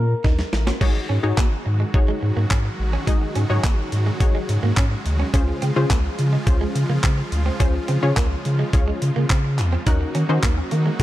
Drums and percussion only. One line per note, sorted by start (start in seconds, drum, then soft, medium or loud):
0.24 kick loud
0.24 snare medium
0.39 snare medium
0.53 snare medium
0.67 snare medium
0.81 kick loud
0.81 crash medium
1.38 kick loud
1.38 clap loud
1.94 kick loud
2.51 kick loud
2.51 clap loud
3.07 kick loud
3.07 closed hi-hat medium
3.35 closed hi-hat medium
3.64 kick loud
3.64 clap loud
3.64 closed hi-hat medium
3.92 closed hi-hat medium
4.20 kick loud
4.20 closed hi-hat medium
4.49 closed hi-hat medium
4.77 kick loud
4.77 clap loud
4.77 closed hi-hat medium
5.06 closed hi-hat medium
5.34 kick loud
5.34 closed hi-hat medium
5.62 closed hi-hat medium
5.90 kick loud
5.90 clap loud
5.90 closed hi-hat medium
6.19 closed hi-hat medium
6.47 kick loud
6.47 closed hi-hat medium
6.76 closed hi-hat medium
7.03 kick loud
7.03 clap loud
7.03 closed hi-hat medium
7.32 closed hi-hat medium
7.60 kick loud
7.60 closed hi-hat medium
7.88 closed hi-hat medium
8.17 kick loud
8.17 clap loud
8.17 closed hi-hat medium
8.45 closed hi-hat medium
8.73 kick loud
8.73 closed hi-hat medium
9.02 closed hi-hat medium
9.30 kick loud
9.30 clap loud
9.30 closed hi-hat medium
9.58 clap medium
9.58 closed hi-hat medium
9.87 kick loud
9.87 closed hi-hat medium
10.15 closed hi-hat medium
10.43 kick loud
10.43 clap loud
10.43 closed hi-hat medium
10.71 closed hi-hat medium
11.00 kick loud
11.00 closed hi-hat medium